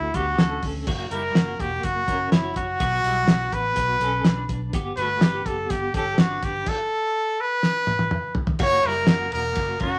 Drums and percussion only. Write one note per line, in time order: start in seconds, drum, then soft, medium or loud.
0.14 kick medium
0.14 closed hi-hat medium
0.38 snare loud
0.38 closed hi-hat medium
0.62 kick medium
0.62 open hi-hat medium
0.87 kick loud
0.87 crash medium
1.11 closed hi-hat medium
1.35 snare loud
1.35 closed hi-hat medium
1.59 kick medium
1.59 closed hi-hat medium
1.83 kick medium
1.83 closed hi-hat loud
2.08 kick medium
2.08 closed hi-hat medium
2.32 snare loud
2.32 closed hi-hat medium
2.56 kick medium
2.56 closed hi-hat medium
2.80 kick loud
2.80 closed hi-hat medium
3.04 closed hi-hat medium
3.28 snare loud
3.28 closed hi-hat medium
3.52 kick medium
3.52 closed hi-hat medium
3.76 kick medium
3.76 closed hi-hat loud
4.01 closed hi-hat medium
4.25 snare loud
4.25 closed hi-hat medium
4.49 kick medium
4.49 closed hi-hat medium
4.73 kick loud
4.73 closed hi-hat medium
4.97 closed hi-hat medium
5.21 snare loud
5.21 closed hi-hat medium
5.46 kick medium
5.46 closed hi-hat medium
5.70 kick medium
5.70 closed hi-hat medium
5.94 kick loud
5.94 closed hi-hat medium
6.18 snare loud
6.18 closed hi-hat medium
6.43 kick loud
6.43 closed hi-hat medium
6.66 kick loud
6.66 crash medium
7.63 snare medium
7.87 high tom medium
7.99 high tom medium
8.11 mid tom medium
8.35 floor tom medium
8.47 floor tom medium
8.59 kick loud
8.59 crash loud
8.83 ride medium
9.07 snare loud
9.07 ride medium
9.32 ride medium
9.55 kick medium
9.55 ride medium
9.80 kick medium
9.80 ride medium